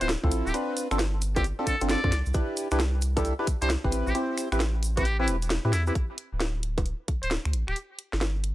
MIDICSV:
0, 0, Header, 1, 5, 480
1, 0, Start_track
1, 0, Tempo, 451128
1, 576, Time_signature, 4, 2, 24, 8
1, 9094, End_track
2, 0, Start_track
2, 0, Title_t, "Muted trumpet"
2, 0, Program_c, 0, 59
2, 10, Note_on_c, 0, 72, 92
2, 91, Note_off_c, 0, 72, 0
2, 490, Note_on_c, 0, 67, 95
2, 571, Note_off_c, 0, 67, 0
2, 1452, Note_on_c, 0, 67, 101
2, 1532, Note_off_c, 0, 67, 0
2, 1775, Note_on_c, 0, 69, 96
2, 1924, Note_off_c, 0, 69, 0
2, 2017, Note_on_c, 0, 74, 90
2, 2318, Note_off_c, 0, 74, 0
2, 3850, Note_on_c, 0, 72, 100
2, 3931, Note_off_c, 0, 72, 0
2, 4331, Note_on_c, 0, 67, 91
2, 4412, Note_off_c, 0, 67, 0
2, 5290, Note_on_c, 0, 67, 99
2, 5499, Note_off_c, 0, 67, 0
2, 5529, Note_on_c, 0, 64, 91
2, 5611, Note_off_c, 0, 64, 0
2, 6095, Note_on_c, 0, 64, 91
2, 6195, Note_off_c, 0, 64, 0
2, 6249, Note_on_c, 0, 64, 79
2, 6304, Note_off_c, 0, 64, 0
2, 7693, Note_on_c, 0, 72, 90
2, 7773, Note_off_c, 0, 72, 0
2, 8172, Note_on_c, 0, 67, 93
2, 8252, Note_off_c, 0, 67, 0
2, 9094, End_track
3, 0, Start_track
3, 0, Title_t, "Synth stab"
3, 0, Program_c, 1, 62
3, 10, Note_on_c, 1, 60, 78
3, 10, Note_on_c, 1, 64, 68
3, 10, Note_on_c, 1, 65, 71
3, 10, Note_on_c, 1, 71, 84
3, 95, Note_off_c, 1, 60, 0
3, 95, Note_off_c, 1, 64, 0
3, 95, Note_off_c, 1, 65, 0
3, 95, Note_off_c, 1, 71, 0
3, 250, Note_on_c, 1, 60, 85
3, 250, Note_on_c, 1, 64, 76
3, 250, Note_on_c, 1, 65, 76
3, 250, Note_on_c, 1, 69, 86
3, 555, Note_off_c, 1, 60, 0
3, 555, Note_off_c, 1, 64, 0
3, 555, Note_off_c, 1, 65, 0
3, 555, Note_off_c, 1, 69, 0
3, 574, Note_on_c, 1, 60, 80
3, 574, Note_on_c, 1, 62, 75
3, 574, Note_on_c, 1, 65, 71
3, 574, Note_on_c, 1, 71, 92
3, 933, Note_off_c, 1, 60, 0
3, 933, Note_off_c, 1, 62, 0
3, 933, Note_off_c, 1, 65, 0
3, 933, Note_off_c, 1, 71, 0
3, 970, Note_on_c, 1, 60, 84
3, 970, Note_on_c, 1, 62, 74
3, 970, Note_on_c, 1, 65, 76
3, 970, Note_on_c, 1, 69, 92
3, 1055, Note_off_c, 1, 60, 0
3, 1055, Note_off_c, 1, 62, 0
3, 1055, Note_off_c, 1, 65, 0
3, 1055, Note_off_c, 1, 69, 0
3, 1451, Note_on_c, 1, 60, 81
3, 1451, Note_on_c, 1, 62, 77
3, 1451, Note_on_c, 1, 65, 76
3, 1451, Note_on_c, 1, 69, 94
3, 1536, Note_off_c, 1, 60, 0
3, 1536, Note_off_c, 1, 62, 0
3, 1536, Note_off_c, 1, 65, 0
3, 1536, Note_off_c, 1, 69, 0
3, 1690, Note_on_c, 1, 69, 93
3, 1691, Note_on_c, 1, 60, 86
3, 1691, Note_on_c, 1, 62, 77
3, 1691, Note_on_c, 1, 65, 76
3, 1869, Note_off_c, 1, 60, 0
3, 1869, Note_off_c, 1, 62, 0
3, 1869, Note_off_c, 1, 65, 0
3, 1869, Note_off_c, 1, 69, 0
3, 1930, Note_on_c, 1, 60, 97
3, 1930, Note_on_c, 1, 62, 89
3, 1930, Note_on_c, 1, 65, 91
3, 1930, Note_on_c, 1, 69, 104
3, 2133, Note_off_c, 1, 60, 0
3, 2133, Note_off_c, 1, 62, 0
3, 2133, Note_off_c, 1, 65, 0
3, 2133, Note_off_c, 1, 69, 0
3, 2169, Note_on_c, 1, 60, 79
3, 2169, Note_on_c, 1, 62, 70
3, 2169, Note_on_c, 1, 65, 72
3, 2169, Note_on_c, 1, 69, 84
3, 2244, Note_off_c, 1, 60, 0
3, 2244, Note_off_c, 1, 62, 0
3, 2244, Note_off_c, 1, 65, 0
3, 2245, Note_off_c, 1, 69, 0
3, 2493, Note_on_c, 1, 71, 84
3, 2494, Note_on_c, 1, 62, 80
3, 2494, Note_on_c, 1, 64, 68
3, 2494, Note_on_c, 1, 67, 71
3, 2853, Note_off_c, 1, 62, 0
3, 2853, Note_off_c, 1, 64, 0
3, 2853, Note_off_c, 1, 67, 0
3, 2853, Note_off_c, 1, 71, 0
3, 2890, Note_on_c, 1, 62, 97
3, 2890, Note_on_c, 1, 64, 91
3, 2890, Note_on_c, 1, 67, 90
3, 2890, Note_on_c, 1, 71, 107
3, 2975, Note_off_c, 1, 62, 0
3, 2975, Note_off_c, 1, 64, 0
3, 2975, Note_off_c, 1, 67, 0
3, 2975, Note_off_c, 1, 71, 0
3, 3368, Note_on_c, 1, 62, 97
3, 3369, Note_on_c, 1, 64, 88
3, 3369, Note_on_c, 1, 67, 91
3, 3369, Note_on_c, 1, 69, 109
3, 3548, Note_off_c, 1, 62, 0
3, 3548, Note_off_c, 1, 64, 0
3, 3548, Note_off_c, 1, 67, 0
3, 3548, Note_off_c, 1, 69, 0
3, 3608, Note_on_c, 1, 67, 80
3, 3609, Note_on_c, 1, 62, 84
3, 3609, Note_on_c, 1, 64, 80
3, 3609, Note_on_c, 1, 71, 92
3, 3694, Note_off_c, 1, 67, 0
3, 3695, Note_off_c, 1, 62, 0
3, 3695, Note_off_c, 1, 64, 0
3, 3695, Note_off_c, 1, 71, 0
3, 3849, Note_on_c, 1, 72, 82
3, 3850, Note_on_c, 1, 62, 78
3, 3850, Note_on_c, 1, 64, 72
3, 3850, Note_on_c, 1, 67, 69
3, 3935, Note_off_c, 1, 62, 0
3, 3935, Note_off_c, 1, 64, 0
3, 3935, Note_off_c, 1, 67, 0
3, 3935, Note_off_c, 1, 72, 0
3, 4089, Note_on_c, 1, 67, 74
3, 4090, Note_on_c, 1, 60, 82
3, 4090, Note_on_c, 1, 64, 75
3, 4090, Note_on_c, 1, 71, 92
3, 4394, Note_off_c, 1, 67, 0
3, 4395, Note_off_c, 1, 60, 0
3, 4395, Note_off_c, 1, 64, 0
3, 4395, Note_off_c, 1, 71, 0
3, 4414, Note_on_c, 1, 60, 80
3, 4414, Note_on_c, 1, 64, 77
3, 4414, Note_on_c, 1, 67, 72
3, 4414, Note_on_c, 1, 72, 88
3, 4773, Note_off_c, 1, 60, 0
3, 4773, Note_off_c, 1, 64, 0
3, 4773, Note_off_c, 1, 67, 0
3, 4773, Note_off_c, 1, 72, 0
3, 4810, Note_on_c, 1, 71, 94
3, 4811, Note_on_c, 1, 60, 86
3, 4811, Note_on_c, 1, 64, 77
3, 4811, Note_on_c, 1, 67, 77
3, 4895, Note_off_c, 1, 60, 0
3, 4895, Note_off_c, 1, 67, 0
3, 4895, Note_off_c, 1, 71, 0
3, 4896, Note_off_c, 1, 64, 0
3, 5289, Note_on_c, 1, 67, 77
3, 5290, Note_on_c, 1, 60, 79
3, 5290, Note_on_c, 1, 64, 76
3, 5290, Note_on_c, 1, 71, 90
3, 5375, Note_off_c, 1, 60, 0
3, 5375, Note_off_c, 1, 64, 0
3, 5375, Note_off_c, 1, 67, 0
3, 5375, Note_off_c, 1, 71, 0
3, 5528, Note_on_c, 1, 67, 75
3, 5529, Note_on_c, 1, 60, 84
3, 5529, Note_on_c, 1, 64, 77
3, 5529, Note_on_c, 1, 71, 95
3, 5708, Note_off_c, 1, 60, 0
3, 5708, Note_off_c, 1, 64, 0
3, 5708, Note_off_c, 1, 67, 0
3, 5708, Note_off_c, 1, 71, 0
3, 6010, Note_on_c, 1, 60, 73
3, 6010, Note_on_c, 1, 64, 71
3, 6010, Note_on_c, 1, 67, 67
3, 6010, Note_on_c, 1, 71, 81
3, 6095, Note_off_c, 1, 60, 0
3, 6095, Note_off_c, 1, 64, 0
3, 6095, Note_off_c, 1, 67, 0
3, 6095, Note_off_c, 1, 71, 0
3, 6250, Note_on_c, 1, 60, 80
3, 6250, Note_on_c, 1, 64, 76
3, 6250, Note_on_c, 1, 67, 73
3, 6250, Note_on_c, 1, 71, 87
3, 6322, Note_off_c, 1, 60, 0
3, 6322, Note_off_c, 1, 64, 0
3, 6322, Note_off_c, 1, 67, 0
3, 6322, Note_off_c, 1, 71, 0
3, 9094, End_track
4, 0, Start_track
4, 0, Title_t, "Sub bass"
4, 0, Program_c, 2, 38
4, 11, Note_on_c, 2, 26, 81
4, 169, Note_off_c, 2, 26, 0
4, 250, Note_on_c, 2, 38, 98
4, 335, Note_on_c, 2, 33, 88
4, 351, Note_off_c, 2, 38, 0
4, 450, Note_off_c, 2, 33, 0
4, 491, Note_on_c, 2, 26, 88
4, 553, Note_off_c, 2, 26, 0
4, 970, Note_on_c, 2, 31, 98
4, 1625, Note_off_c, 2, 31, 0
4, 1930, Note_on_c, 2, 31, 81
4, 2088, Note_off_c, 2, 31, 0
4, 2170, Note_on_c, 2, 43, 104
4, 2255, Note_on_c, 2, 36, 91
4, 2271, Note_off_c, 2, 43, 0
4, 2369, Note_off_c, 2, 36, 0
4, 2410, Note_on_c, 2, 36, 86
4, 2473, Note_off_c, 2, 36, 0
4, 2891, Note_on_c, 2, 36, 99
4, 3545, Note_off_c, 2, 36, 0
4, 3849, Note_on_c, 2, 36, 86
4, 4008, Note_off_c, 2, 36, 0
4, 4090, Note_on_c, 2, 31, 101
4, 4173, Note_on_c, 2, 33, 88
4, 4189, Note_off_c, 2, 31, 0
4, 4289, Note_off_c, 2, 33, 0
4, 4329, Note_on_c, 2, 33, 86
4, 4392, Note_off_c, 2, 33, 0
4, 4809, Note_on_c, 2, 33, 96
4, 5615, Note_on_c, 2, 28, 108
4, 5631, Note_off_c, 2, 33, 0
4, 5945, Note_off_c, 2, 28, 0
4, 6009, Note_on_c, 2, 45, 102
4, 6095, Note_on_c, 2, 40, 81
4, 6111, Note_off_c, 2, 45, 0
4, 6290, Note_off_c, 2, 40, 0
4, 6730, Note_on_c, 2, 26, 96
4, 7385, Note_off_c, 2, 26, 0
4, 7691, Note_on_c, 2, 26, 79
4, 7848, Note_off_c, 2, 26, 0
4, 7931, Note_on_c, 2, 38, 95
4, 8014, Note_on_c, 2, 33, 86
4, 8030, Note_off_c, 2, 38, 0
4, 8129, Note_off_c, 2, 33, 0
4, 8170, Note_on_c, 2, 26, 86
4, 8233, Note_off_c, 2, 26, 0
4, 8651, Note_on_c, 2, 31, 95
4, 9094, Note_off_c, 2, 31, 0
4, 9094, End_track
5, 0, Start_track
5, 0, Title_t, "Drums"
5, 12, Note_on_c, 9, 42, 70
5, 17, Note_on_c, 9, 82, 49
5, 96, Note_off_c, 9, 42, 0
5, 96, Note_on_c, 9, 38, 123
5, 96, Note_on_c, 9, 42, 69
5, 102, Note_off_c, 9, 82, 0
5, 102, Note_on_c, 9, 82, 38
5, 203, Note_off_c, 9, 38, 0
5, 203, Note_off_c, 9, 42, 0
5, 209, Note_off_c, 9, 82, 0
5, 251, Note_on_c, 9, 36, 62
5, 334, Note_on_c, 9, 82, 85
5, 335, Note_on_c, 9, 42, 85
5, 357, Note_off_c, 9, 36, 0
5, 441, Note_off_c, 9, 82, 0
5, 442, Note_off_c, 9, 42, 0
5, 498, Note_on_c, 9, 82, 52
5, 576, Note_on_c, 9, 42, 73
5, 579, Note_off_c, 9, 82, 0
5, 579, Note_on_c, 9, 82, 36
5, 682, Note_off_c, 9, 42, 0
5, 686, Note_off_c, 9, 82, 0
5, 815, Note_on_c, 9, 42, 106
5, 821, Note_on_c, 9, 82, 96
5, 922, Note_off_c, 9, 42, 0
5, 927, Note_off_c, 9, 82, 0
5, 972, Note_on_c, 9, 26, 68
5, 972, Note_on_c, 9, 42, 39
5, 973, Note_on_c, 9, 82, 54
5, 1056, Note_off_c, 9, 42, 0
5, 1056, Note_on_c, 9, 38, 115
5, 1056, Note_on_c, 9, 42, 67
5, 1056, Note_on_c, 9, 60, 62
5, 1060, Note_off_c, 9, 82, 0
5, 1060, Note_on_c, 9, 82, 39
5, 1078, Note_off_c, 9, 26, 0
5, 1163, Note_off_c, 9, 38, 0
5, 1163, Note_off_c, 9, 42, 0
5, 1163, Note_off_c, 9, 60, 0
5, 1167, Note_off_c, 9, 82, 0
5, 1293, Note_on_c, 9, 82, 82
5, 1296, Note_on_c, 9, 42, 95
5, 1400, Note_off_c, 9, 82, 0
5, 1402, Note_off_c, 9, 42, 0
5, 1448, Note_on_c, 9, 82, 51
5, 1451, Note_on_c, 9, 36, 108
5, 1451, Note_on_c, 9, 42, 73
5, 1451, Note_on_c, 9, 60, 86
5, 1536, Note_off_c, 9, 42, 0
5, 1536, Note_on_c, 9, 42, 70
5, 1538, Note_off_c, 9, 82, 0
5, 1538, Note_on_c, 9, 82, 39
5, 1557, Note_off_c, 9, 36, 0
5, 1558, Note_off_c, 9, 60, 0
5, 1642, Note_off_c, 9, 42, 0
5, 1645, Note_off_c, 9, 82, 0
5, 1775, Note_on_c, 9, 36, 63
5, 1775, Note_on_c, 9, 42, 104
5, 1777, Note_on_c, 9, 82, 84
5, 1881, Note_off_c, 9, 36, 0
5, 1882, Note_off_c, 9, 42, 0
5, 1883, Note_off_c, 9, 82, 0
5, 1923, Note_on_c, 9, 82, 48
5, 1931, Note_on_c, 9, 42, 74
5, 2014, Note_off_c, 9, 82, 0
5, 2014, Note_on_c, 9, 82, 36
5, 2016, Note_off_c, 9, 42, 0
5, 2016, Note_on_c, 9, 38, 119
5, 2016, Note_on_c, 9, 42, 72
5, 2120, Note_off_c, 9, 82, 0
5, 2122, Note_off_c, 9, 38, 0
5, 2122, Note_off_c, 9, 42, 0
5, 2171, Note_on_c, 9, 36, 105
5, 2256, Note_on_c, 9, 26, 31
5, 2256, Note_on_c, 9, 38, 57
5, 2256, Note_on_c, 9, 42, 91
5, 2260, Note_on_c, 9, 82, 91
5, 2277, Note_off_c, 9, 36, 0
5, 2362, Note_off_c, 9, 26, 0
5, 2362, Note_off_c, 9, 38, 0
5, 2362, Note_off_c, 9, 42, 0
5, 2367, Note_off_c, 9, 82, 0
5, 2404, Note_on_c, 9, 82, 52
5, 2486, Note_off_c, 9, 82, 0
5, 2486, Note_on_c, 9, 82, 42
5, 2495, Note_on_c, 9, 36, 116
5, 2496, Note_on_c, 9, 42, 71
5, 2592, Note_off_c, 9, 82, 0
5, 2601, Note_off_c, 9, 36, 0
5, 2602, Note_off_c, 9, 42, 0
5, 2733, Note_on_c, 9, 82, 97
5, 2735, Note_on_c, 9, 42, 103
5, 2839, Note_off_c, 9, 82, 0
5, 2841, Note_off_c, 9, 42, 0
5, 2884, Note_on_c, 9, 82, 52
5, 2891, Note_on_c, 9, 26, 71
5, 2976, Note_on_c, 9, 38, 116
5, 2976, Note_on_c, 9, 42, 68
5, 2976, Note_on_c, 9, 60, 61
5, 2978, Note_off_c, 9, 82, 0
5, 2978, Note_on_c, 9, 82, 37
5, 2997, Note_off_c, 9, 26, 0
5, 3082, Note_off_c, 9, 38, 0
5, 3082, Note_off_c, 9, 42, 0
5, 3082, Note_off_c, 9, 60, 0
5, 3085, Note_off_c, 9, 82, 0
5, 3208, Note_on_c, 9, 82, 95
5, 3215, Note_on_c, 9, 42, 100
5, 3314, Note_off_c, 9, 82, 0
5, 3322, Note_off_c, 9, 42, 0
5, 3370, Note_on_c, 9, 36, 106
5, 3371, Note_on_c, 9, 42, 73
5, 3371, Note_on_c, 9, 60, 88
5, 3372, Note_on_c, 9, 82, 54
5, 3456, Note_off_c, 9, 42, 0
5, 3456, Note_on_c, 9, 42, 68
5, 3458, Note_off_c, 9, 82, 0
5, 3458, Note_on_c, 9, 82, 42
5, 3477, Note_off_c, 9, 36, 0
5, 3477, Note_off_c, 9, 60, 0
5, 3562, Note_off_c, 9, 42, 0
5, 3565, Note_off_c, 9, 82, 0
5, 3695, Note_on_c, 9, 36, 108
5, 3695, Note_on_c, 9, 42, 107
5, 3697, Note_on_c, 9, 82, 89
5, 3801, Note_off_c, 9, 36, 0
5, 3801, Note_off_c, 9, 42, 0
5, 3803, Note_off_c, 9, 82, 0
5, 3848, Note_on_c, 9, 82, 43
5, 3851, Note_on_c, 9, 42, 73
5, 3935, Note_off_c, 9, 42, 0
5, 3935, Note_on_c, 9, 38, 120
5, 3935, Note_on_c, 9, 42, 73
5, 3936, Note_off_c, 9, 82, 0
5, 3936, Note_on_c, 9, 82, 42
5, 4041, Note_off_c, 9, 38, 0
5, 4041, Note_off_c, 9, 42, 0
5, 4042, Note_off_c, 9, 82, 0
5, 4090, Note_on_c, 9, 36, 59
5, 4172, Note_on_c, 9, 82, 87
5, 4175, Note_on_c, 9, 42, 94
5, 4197, Note_off_c, 9, 36, 0
5, 4279, Note_off_c, 9, 82, 0
5, 4281, Note_off_c, 9, 42, 0
5, 4331, Note_on_c, 9, 82, 50
5, 4413, Note_off_c, 9, 82, 0
5, 4413, Note_on_c, 9, 82, 37
5, 4415, Note_on_c, 9, 42, 71
5, 4519, Note_off_c, 9, 82, 0
5, 4522, Note_off_c, 9, 42, 0
5, 4656, Note_on_c, 9, 26, 31
5, 4656, Note_on_c, 9, 42, 107
5, 4657, Note_on_c, 9, 82, 92
5, 4762, Note_off_c, 9, 26, 0
5, 4762, Note_off_c, 9, 42, 0
5, 4764, Note_off_c, 9, 82, 0
5, 4812, Note_on_c, 9, 26, 68
5, 4812, Note_on_c, 9, 42, 40
5, 4818, Note_on_c, 9, 82, 49
5, 4895, Note_off_c, 9, 42, 0
5, 4895, Note_on_c, 9, 38, 114
5, 4895, Note_on_c, 9, 42, 65
5, 4895, Note_on_c, 9, 60, 62
5, 4900, Note_off_c, 9, 82, 0
5, 4900, Note_on_c, 9, 82, 42
5, 4918, Note_off_c, 9, 26, 0
5, 5002, Note_off_c, 9, 38, 0
5, 5002, Note_off_c, 9, 42, 0
5, 5002, Note_off_c, 9, 60, 0
5, 5006, Note_off_c, 9, 82, 0
5, 5136, Note_on_c, 9, 42, 98
5, 5146, Note_on_c, 9, 82, 88
5, 5242, Note_off_c, 9, 42, 0
5, 5252, Note_off_c, 9, 82, 0
5, 5291, Note_on_c, 9, 36, 101
5, 5292, Note_on_c, 9, 42, 74
5, 5292, Note_on_c, 9, 60, 82
5, 5293, Note_on_c, 9, 82, 55
5, 5368, Note_off_c, 9, 82, 0
5, 5368, Note_on_c, 9, 82, 34
5, 5375, Note_off_c, 9, 42, 0
5, 5375, Note_on_c, 9, 42, 68
5, 5397, Note_off_c, 9, 36, 0
5, 5398, Note_off_c, 9, 60, 0
5, 5474, Note_off_c, 9, 82, 0
5, 5482, Note_off_c, 9, 42, 0
5, 5613, Note_on_c, 9, 82, 89
5, 5615, Note_on_c, 9, 42, 113
5, 5720, Note_off_c, 9, 82, 0
5, 5721, Note_off_c, 9, 42, 0
5, 5768, Note_on_c, 9, 82, 47
5, 5771, Note_on_c, 9, 42, 69
5, 5848, Note_off_c, 9, 82, 0
5, 5848, Note_on_c, 9, 82, 38
5, 5855, Note_off_c, 9, 42, 0
5, 5855, Note_on_c, 9, 38, 125
5, 5855, Note_on_c, 9, 42, 71
5, 5955, Note_off_c, 9, 82, 0
5, 5961, Note_off_c, 9, 38, 0
5, 5961, Note_off_c, 9, 42, 0
5, 6096, Note_on_c, 9, 26, 31
5, 6096, Note_on_c, 9, 38, 57
5, 6096, Note_on_c, 9, 42, 99
5, 6096, Note_on_c, 9, 82, 81
5, 6202, Note_off_c, 9, 26, 0
5, 6202, Note_off_c, 9, 38, 0
5, 6202, Note_off_c, 9, 42, 0
5, 6202, Note_off_c, 9, 82, 0
5, 6244, Note_on_c, 9, 82, 52
5, 6335, Note_on_c, 9, 36, 114
5, 6335, Note_on_c, 9, 42, 64
5, 6351, Note_off_c, 9, 82, 0
5, 6441, Note_off_c, 9, 36, 0
5, 6441, Note_off_c, 9, 42, 0
5, 6574, Note_on_c, 9, 42, 102
5, 6681, Note_off_c, 9, 42, 0
5, 6815, Note_on_c, 9, 38, 114
5, 6815, Note_on_c, 9, 42, 60
5, 6815, Note_on_c, 9, 60, 56
5, 6921, Note_off_c, 9, 38, 0
5, 6921, Note_off_c, 9, 42, 0
5, 6921, Note_off_c, 9, 60, 0
5, 7055, Note_on_c, 9, 42, 105
5, 7161, Note_off_c, 9, 42, 0
5, 7211, Note_on_c, 9, 36, 106
5, 7211, Note_on_c, 9, 42, 67
5, 7211, Note_on_c, 9, 60, 75
5, 7295, Note_off_c, 9, 42, 0
5, 7295, Note_on_c, 9, 42, 62
5, 7317, Note_off_c, 9, 36, 0
5, 7317, Note_off_c, 9, 60, 0
5, 7401, Note_off_c, 9, 42, 0
5, 7535, Note_on_c, 9, 36, 103
5, 7535, Note_on_c, 9, 42, 106
5, 7641, Note_off_c, 9, 42, 0
5, 7642, Note_off_c, 9, 36, 0
5, 7691, Note_on_c, 9, 42, 67
5, 7777, Note_off_c, 9, 42, 0
5, 7777, Note_on_c, 9, 38, 116
5, 7777, Note_on_c, 9, 42, 66
5, 7883, Note_off_c, 9, 38, 0
5, 7883, Note_off_c, 9, 42, 0
5, 7932, Note_on_c, 9, 26, 73
5, 8016, Note_on_c, 9, 42, 100
5, 8038, Note_off_c, 9, 26, 0
5, 8123, Note_off_c, 9, 42, 0
5, 8173, Note_on_c, 9, 26, 67
5, 8258, Note_on_c, 9, 42, 64
5, 8279, Note_off_c, 9, 26, 0
5, 8364, Note_off_c, 9, 42, 0
5, 8497, Note_on_c, 9, 42, 102
5, 8604, Note_off_c, 9, 42, 0
5, 8653, Note_on_c, 9, 38, 63
5, 8737, Note_off_c, 9, 38, 0
5, 8737, Note_on_c, 9, 38, 112
5, 8737, Note_on_c, 9, 42, 58
5, 8737, Note_on_c, 9, 60, 54
5, 8843, Note_off_c, 9, 38, 0
5, 8843, Note_off_c, 9, 42, 0
5, 8843, Note_off_c, 9, 60, 0
5, 8977, Note_on_c, 9, 42, 106
5, 9084, Note_off_c, 9, 42, 0
5, 9094, End_track
0, 0, End_of_file